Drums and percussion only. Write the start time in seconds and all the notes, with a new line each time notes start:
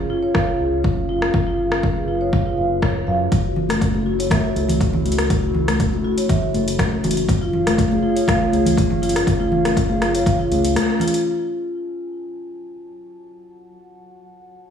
0.35 kick, cross-stick
0.84 kick
1.22 cross-stick
1.34 kick
1.72 cross-stick
1.83 kick
2.33 kick
2.82 kick, cross-stick
3.32 kick, closed hi-hat
3.56 low conga
3.69 cross-stick, closed hi-hat, high conga
3.81 kick, closed hi-hat
3.94 high conga
4.20 closed hi-hat
4.30 kick, cross-stick, closed hi-hat, high conga, low conga
4.56 closed hi-hat, high conga
4.68 closed hi-hat, low conga
4.81 kick, closed hi-hat
4.93 low conga
5.06 closed hi-hat, high conga
5.12 closed hi-hat
5.18 cross-stick, closed hi-hat
5.30 kick, closed hi-hat
5.43 high conga
5.54 low conga
5.68 cross-stick, closed hi-hat, high conga
5.80 kick, closed hi-hat
5.94 high conga
6.18 closed hi-hat
6.29 kick, closed hi-hat, low conga
6.54 closed hi-hat, high conga
6.68 closed hi-hat
6.79 kick, cross-stick, closed hi-hat, high conga
7.04 closed hi-hat, low conga
7.11 closed hi-hat
7.17 closed hi-hat
7.29 kick, closed hi-hat
7.53 low conga
7.67 cross-stick, closed hi-hat, high conga
7.78 kick, closed hi-hat
7.92 high conga
8.17 closed hi-hat
8.27 kick, cross-stick, closed hi-hat, high conga, low conga
8.53 closed hi-hat, high conga
8.66 closed hi-hat, low conga
8.77 kick, closed hi-hat
8.90 low conga
9.02 closed hi-hat, high conga
9.09 closed hi-hat
9.16 cross-stick, closed hi-hat
9.27 kick, closed hi-hat
9.39 high conga
9.52 low conga
9.65 cross-stick, closed hi-hat, high conga
9.77 kick, closed hi-hat
9.90 high conga
10.02 cross-stick, closed hi-hat
10.15 closed hi-hat
10.26 kick, closed hi-hat, low conga
10.51 closed hi-hat, high conga
10.64 closed hi-hat
10.76 cross-stick, closed hi-hat, high conga
11.00 closed hi-hat, low conga
11.08 closed hi-hat
11.14 closed hi-hat